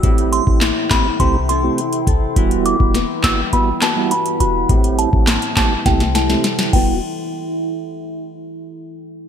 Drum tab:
CC |----------------|----------------|--------------x-|----------------|
HH |xxx-x-x-x-x-xxx-|xxx-x-x-x-x-xxx-|xxx-xxx-xxx-xx--|----------------|
CP |----x-x---------|------x---x-----|----x-x---------|----------------|
SD |----o-o---------|----o-o---o-----|----o-o-oooooo--|----------------|
BD |o--o--o-o-----o-|o--o--o-o-------|o--o--o-o-----o-|----------------|